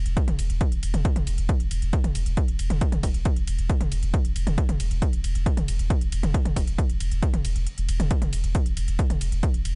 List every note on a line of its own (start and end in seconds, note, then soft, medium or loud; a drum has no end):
0.06 0.17 E1 medium
0.06 closed hi-hat medium
0.17 kick loud
0.17 closed hi-hat medium
0.28 0.38 E1 medium
0.28 closed hi-hat medium
0.28 mid tom medium
0.39 0.49 E1 loud
0.39 open hi-hat loud
0.39 ride medium
0.50 0.61 E1 medium
0.50 closed hi-hat medium
0.61 kick loud
0.61 closed hi-hat medium
0.72 0.82 E1 medium
0.72 closed hi-hat medium
0.83 0.94 E1 loud
0.83 open hi-hat loud
0.83 ride medium
0.94 1.05 E1 medium
0.94 closed hi-hat medium
0.94 mid tom medium
1.05 kick loud
1.05 closed hi-hat medium
1.16 1.27 E1 medium
1.16 closed hi-hat medium
1.16 mid tom medium
1.27 1.38 E1 loud
1.27 open hi-hat loud
1.27 ride medium
1.38 1.49 E1 medium
1.38 closed hi-hat medium
1.49 kick loud
1.49 closed hi-hat medium
1.60 1.71 E1 medium
1.60 closed hi-hat soft
1.71 1.82 E1 loud
1.71 open hi-hat medium
1.71 ride medium
1.82 1.93 E1 medium
1.82 closed hi-hat soft
1.93 kick loud
1.93 closed hi-hat medium
2.04 2.15 E1 medium
2.04 closed hi-hat soft
2.04 mid tom medium
2.15 2.26 E1 loud
2.15 open hi-hat loud
2.15 ride medium
2.26 2.37 E1 medium
2.26 closed hi-hat soft
2.37 kick loud
2.37 closed hi-hat medium
2.48 2.59 E1 medium
2.48 closed hi-hat medium
2.59 2.70 E1 loud
2.59 open hi-hat medium
2.59 ride medium
2.70 2.81 E1 medium
2.70 closed hi-hat soft
2.70 mid tom medium
2.81 kick loud
2.81 closed hi-hat medium
2.92 3.03 E1 medium
2.92 closed hi-hat soft
2.92 mid tom loud
3.03 3.14 E1 loud
3.03 kick medium
3.03 open hi-hat loud
3.03 ride medium
3.14 3.25 E1 medium
3.14 closed hi-hat medium
3.25 kick loud
3.25 closed hi-hat medium
3.36 3.47 E1 medium
3.36 closed hi-hat medium
3.47 3.58 E1 loud
3.47 open hi-hat medium
3.47 ride medium
3.59 3.69 E1 medium
3.59 closed hi-hat medium
3.70 kick loud
3.70 closed hi-hat medium
3.81 3.91 E1 medium
3.81 closed hi-hat soft
3.81 mid tom loud
3.92 4.02 E1 loud
3.92 open hi-hat loud
3.92 ride medium
4.03 4.14 E1 medium
4.03 closed hi-hat soft
4.14 kick loud
4.14 closed hi-hat medium
4.25 4.35 E1 medium
4.25 closed hi-hat medium
4.36 4.46 E1 loud
4.36 open hi-hat medium
4.36 ride medium
4.47 4.58 E1 medium
4.47 closed hi-hat medium
4.47 mid tom medium
4.58 kick loud
4.58 closed hi-hat medium
4.69 4.80 E1 medium
4.69 closed hi-hat medium
4.69 mid tom loud
4.80 4.90 E1 loud
4.80 open hi-hat loud
4.80 ride medium
4.91 5.02 E1 medium
4.91 closed hi-hat medium
5.02 kick loud
5.02 closed hi-hat medium
5.13 5.24 E1 medium
5.13 closed hi-hat medium
5.24 5.35 E1 loud
5.24 open hi-hat medium
5.24 ride medium
5.35 5.46 E1 medium
5.35 closed hi-hat medium
5.46 kick loud
5.46 closed hi-hat medium
5.57 5.68 E1 medium
5.57 closed hi-hat medium
5.57 mid tom loud
5.68 5.79 E1 loud
5.68 open hi-hat loud
5.68 ride medium
5.79 5.90 E1 medium
5.79 closed hi-hat soft
5.90 kick loud
5.90 closed hi-hat medium
6.01 6.12 E1 medium
6.01 closed hi-hat medium
6.12 6.23 E1 loud
6.12 open hi-hat medium
6.12 ride medium
6.23 6.34 E1 medium
6.23 closed hi-hat medium
6.23 mid tom loud
6.34 kick loud
6.34 closed hi-hat medium
6.45 6.56 E1 medium
6.45 closed hi-hat medium
6.45 mid tom loud
6.56 6.67 E1 loud
6.56 kick medium
6.56 open hi-hat loud
6.56 ride medium
6.67 6.78 E1 medium
6.67 closed hi-hat medium
6.78 kick loud
6.78 closed hi-hat medium
6.90 7.00 E1 medium
6.90 closed hi-hat medium
7.00 7.11 E1 loud
7.00 open hi-hat medium
7.00 ride medium
7.12 7.22 E1 medium
7.12 closed hi-hat medium
7.23 kick loud
7.23 closed hi-hat medium
7.34 7.44 E1 medium
7.34 closed hi-hat medium
7.34 mid tom medium
7.45 7.55 E1 loud
7.45 open hi-hat loud
7.45 ride medium
7.56 7.67 E1 medium
7.56 closed hi-hat medium
7.67 closed hi-hat medium
7.78 7.88 E1 medium
7.78 closed hi-hat medium
7.89 7.99 E1 loud
7.89 open hi-hat medium
7.89 ride medium
8.00 8.11 E1 medium
8.00 closed hi-hat medium
8.00 mid tom loud
8.11 kick loud
8.11 closed hi-hat medium
8.22 8.32 E1 medium
8.22 closed hi-hat medium
8.22 mid tom medium
8.33 8.43 E1 loud
8.33 open hi-hat loud
8.33 ride medium
8.44 8.55 E1 medium
8.44 closed hi-hat medium
8.55 kick loud
8.55 closed hi-hat medium
8.66 8.76 E1 medium
8.66 closed hi-hat medium
8.77 8.87 E1 loud
8.77 open hi-hat medium
8.77 ride medium
8.88 8.99 E1 medium
8.88 closed hi-hat medium
8.99 kick loud
8.99 closed hi-hat medium
9.10 9.20 E1 medium
9.10 closed hi-hat medium
9.10 mid tom medium
9.21 9.31 E1 loud
9.21 open hi-hat loud
9.21 ride medium
9.32 9.43 E1 medium
9.32 closed hi-hat medium
9.43 kick loud
9.43 closed hi-hat medium
9.54 9.64 E1 medium
9.54 closed hi-hat medium
9.65 9.75 E1 loud
9.65 open hi-hat medium
9.65 ride medium